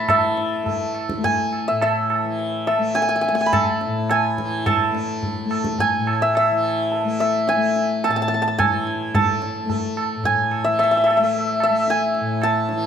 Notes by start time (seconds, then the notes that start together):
Already playing: A2 E3 A3 A5 B5 C#6
0.08 E3 E5, tabla na, tabla ge
0.37 tabla te
0.63 A3, tabla tin, tabla ge
0.95 tabla na
1.09 tabla ke
1.17 A3
1.24 G#5, tabla tin, tabla ge
1.53 tabla na
1.68 A2 E5
1.81 E5, tabla na
2.10 tabla na
2.24 E3
2.39 tabla tin
2.67 E5, tabla na
2.78 A3
2.95 G#5, tabla te
3.02 G#5
3.09 G#5
3.16 G#5
3.21 G#5, tabla te
3.28 A3 G#5
3.35 G#5
3.41 G#5
3.46 B5
3.53 A5, tabla na, tabla ge
3.81 tabla te
3.86 A2
4.10 G#5, tabla na
4.38 E3, tabla ke
4.66 A5, tabla na, tabla ge
4.91 A3, tabla te
5.23 tabla tin, tabla ge
5.45 A3
5.51 tabla na
5.65 tabla ke
5.79 G#5, tabla tin, tabla ge
5.99 A2
6.07 tabla na
6.22 E5
6.35 E5, tabla na
6.51 E3
6.64 tabla na
6.92 tabla tin
7.04 A3
7.20 E5, tabla na
7.48 G#5, tabla te
7.56 A3
7.76 tabla te
8.04 A5, tabla na
8.08 A2 A5
8.16 A5
8.22 A5
8.28 A5, tabla te
8.34 A5
8.42 A5
8.48 A5
8.58 E3 G#5, tabla na, tabla ge
8.87 tabla te
9.13 A3 A5, tabla na, tabla ge
9.42 tabla te
9.65 A3
9.70 tabla tin, tabla ge
9.97 tabla na
10.16 A2
10.24 G#5, tabla tin, tabla ge
10.51 tabla na
10.64 E3 E5
10.79 E5, tabla na
10.84 E5
10.91 E5
10.97 E5
11.04 E5, tabla na
11.10 E5
11.17 A3 E5
11.24 E5
11.33 tabla tin
11.60 E5, tabla na
11.70 A3
11.88 G#5, tabla te
12.15 tabla te
12.21 A2
12.42 A5, tabla na
12.69 E3, tabla te